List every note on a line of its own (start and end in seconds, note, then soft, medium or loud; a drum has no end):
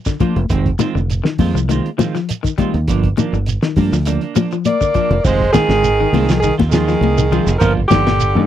0.05 0.15 D3 medium
0.05 kick medium
0.05 snare soft
0.05 shekere medium
0.20 0.39 F3 medium
0.20 0.40 A#3 medium
0.20 0.40 D4 medium
0.20 0.40 F4 medium
0.20 kick medium
0.20 closed hi-hat medium
0.20 high conga medium
0.20 low conga medium
0.20 shekere soft
0.36 0.48 F1 loud
0.36 closed hi-hat soft
0.36 high conga medium
0.49 0.74 F1 medium
0.49 0.69 D#3 medium
0.49 0.69 G#3 medium
0.49 0.69 C4 medium
0.49 muted clean electric guitar stroke medium
0.49 kick loud
0.49 closed hi-hat medium
0.49 shekere medium
0.66 kick medium
0.66 closed hi-hat soft
0.79 0.98 D#3 medium
0.79 0.89 D#3 medium
0.79 0.99 G#3 medium
0.79 0.99 C4 medium
0.79 0.99 F4 medium
0.79 snare soft
0.79 closed hi-hat soft
0.79 high conga medium
0.79 shekere medium
0.95 1.20 F1 medium
0.95 1.13 D3 medium
0.95 shekere soft
1.10 closed hi-hat medium
1.10 shekere medium
1.24 1.42 D#3 medium
1.24 snare medium
1.38 1.52 F2 medium
1.38 1.58 D#3 medium
1.38 1.58 G#3 medium
1.38 1.58 C4 medium
1.38 1.58 F4 medium
1.38 kick medium
1.38 open hi-hat medium
1.38 high conga medium
1.38 low conga medium
1.38 shekere soft
1.54 1.79 C2 medium
1.54 1.64 F3 medium
1.54 closed hi-hat soft
1.54 shekere medium
1.69 1.87 D#3 medium
1.69 1.88 D#3 medium
1.69 1.89 G#3 medium
1.69 1.89 C4 medium
1.69 1.89 F4 medium
1.69 closed hi-hat medium
1.69 high conga medium
1.69 shekere medium
1.86 closed hi-hat soft
1.98 2.17 D#3 medium
1.98 2.08 F3 medium
1.98 2.17 G#3 medium
1.98 2.17 C4 medium
1.98 2.17 F4 medium
1.98 snare soft
1.98 closed hi-hat soft
1.98 high conga medium
1.98 shekere medium
2.15 2.33 F3 medium
2.15 snare soft
2.15 closed hi-hat soft
2.15 shekere soft
2.29 closed hi-hat medium
2.29 shekere medium
2.43 2.52 D#3 medium
2.43 kick medium
2.43 closed hi-hat soft
2.43 shekere medium
2.58 2.77 D#3 medium
2.58 2.76 G3 medium
2.58 2.77 G#3 medium
2.58 2.77 C4 medium
2.58 2.78 F4 medium
2.58 kick medium
2.58 closed hi-hat medium
2.58 high conga medium
2.58 low conga medium
2.58 shekere soft
2.74 2.86 D#2 medium
2.74 closed hi-hat soft
2.88 3.12 G1 medium
2.88 3.07 F3 medium
2.88 3.07 A#3 medium
2.88 3.07 D4 medium
2.88 kick loud
2.88 closed hi-hat medium
2.88 shekere medium
3.03 kick medium
3.03 closed hi-hat soft
3.17 3.27 D#3 medium
3.17 3.36 F3 medium
3.17 3.37 A#3 medium
3.17 3.37 D4 medium
3.17 closed hi-hat medium
3.17 high conga medium
3.17 shekere medium
3.33 3.57 G1 medium
3.33 3.52 D3 medium
3.33 shekere soft
3.46 closed hi-hat medium
3.46 shekere medium
3.62 3.81 D#3 medium
3.62 snare medium
3.62 closed hi-hat soft
3.76 3.90 G2 medium
3.76 3.96 F3 medium
3.76 3.96 A#3 medium
3.76 3.96 D4 medium
3.76 kick medium
3.76 open hi-hat medium
3.76 high conga medium
3.76 low conga medium
3.76 shekere soft
3.92 4.17 D2 medium
3.92 4.02 F3 medium
3.92 snare soft
3.92 shekere medium
4.05 4.25 D3 medium
4.05 4.23 F3 medium
4.05 4.23 A#3 medium
4.05 4.21 D4 medium
4.05 closed hi-hat medium
4.05 shekere medium
4.21 4.35 A#3 soft
4.21 4.35 D4 soft
4.21 closed hi-hat soft
4.35 4.54 F3 medium
4.35 4.46 F3 medium
4.35 4.55 A#3 medium
4.35 4.55 D4 medium
4.35 closed hi-hat medium
4.35 high conga medium
4.35 shekere medium
4.51 4.70 F3 medium
4.51 closed hi-hat soft
4.51 shekere soft
4.65 5.26 A#3 medium
4.65 5.26 D5 loud
4.65 closed hi-hat medium
4.65 high conga medium
4.65 shekere medium
4.81 4.89 D3 medium
4.81 kick medium
4.81 shekere medium
4.94 5.13 F3 medium
4.94 5.14 A#3 medium
4.94 5.14 D4 medium
4.94 kick medium
4.94 closed hi-hat soft
4.94 shekere soft
5.10 5.22 F1 medium
5.10 closed hi-hat soft
5.10 low conga medium
5.24 5.49 F1 loud
5.24 5.43 D#3 medium
5.24 5.52 G#3 medium
5.24 5.43 G#3 medium
5.24 5.44 C4 medium
5.24 5.44 F4 medium
5.24 5.52 C5 loud
5.24 kick loud
5.24 crash medium
5.24 shekere medium
5.41 kick medium
5.52 6.38 D#3 loud
5.52 5.70 D#3 medium
5.52 5.64 D#3 medium
5.52 5.70 G#3 medium
5.52 5.69 C4 medium
5.52 5.69 F4 medium
5.52 6.38 G#4 loud
5.52 kick medium
5.52 snare medium
5.52 ride bell soft
5.52 high conga loud
5.52 shekere medium
5.68 6.05 G#1 medium
5.68 5.88 D3 medium
5.68 5.88 G#3 soft
5.68 5.87 C4 soft
5.68 5.87 F4 medium
5.68 snare medium
5.68 ride bell medium
5.68 shekere soft
5.84 ride bell soft
5.84 shekere medium
6.00 6.18 D#3 medium
6.13 6.50 C2 medium
6.13 6.32 D#3 medium
6.13 6.32 G#3 medium
6.13 6.33 C4 medium
6.13 6.33 F4 medium
6.13 open hi-hat medium
6.13 high conga medium
6.13 low conga medium
6.13 shekere soft
6.29 6.39 F3 medium
6.29 snare medium
6.29 shekere medium
6.40 6.55 D#3 medium
6.40 6.62 D#3 medium
6.40 6.54 G#4 medium
6.40 kick medium
6.40 ride bell medium
6.40 shekere medium
6.58 6.95 D#2 medium
6.58 6.73 C4 soft
6.58 6.72 F4 soft
6.58 kick medium
6.58 snare soft
6.58 high conga medium
6.68 7.55 D#3 medium
6.68 7.57 G#4 medium
6.68 shekere loud
6.73 6.91 D#3 medium
6.73 6.83 F3 medium
6.73 6.91 G#3 medium
6.73 6.92 F4 medium
6.73 snare medium
6.73 ride bell medium
6.88 7.06 F3 medium
6.88 snare soft
6.88 ride bell soft
6.88 shekere soft
7.01 7.39 C2 loud
7.01 ride bell medium
7.01 high conga medium
7.18 7.26 D#3 medium
7.18 shekere medium
7.31 7.50 D#3 medium
7.31 7.50 F3 medium
7.31 7.50 G#3 medium
7.31 7.50 C4 medium
7.31 7.51 F4 medium
7.31 ride bell medium
7.31 low conga medium
7.31 shekere soft
7.47 7.58 F1 loud
7.47 ride bell medium
7.47 shekere medium
7.58 7.85 G1 loud
7.58 7.73 F3 medium
7.58 7.80 F3 medium
7.58 7.80 A#3 medium
7.58 7.80 D4 medium
7.58 7.80 F4 medium
7.58 7.72 A#4 loud
7.58 kick loud
7.58 ride bell medium
7.58 shekere medium
7.77 kick medium
7.88 8.37 G1 loud
7.88 8.45 D3 medium
7.88 8.01 D#3 medium
7.88 8.07 F3 medium
7.88 8.06 A#3 medium
7.88 8.06 D4 medium
7.88 8.45 G4 loud
7.88 kick medium
7.88 snare medium
7.88 ride bell medium
7.88 high conga loud
7.88 shekere medium
7.92 8.08 F4 medium
8.07 8.25 A#2 medium
8.07 8.24 A#3 soft
8.07 8.24 D4 soft
8.07 snare medium
8.07 ride bell medium
8.07 shekere soft
8.20 ride bell medium
8.20 shekere medium
8.35 8.47 G2 medium
8.35 8.47 D#3 medium
8.35 high conga medium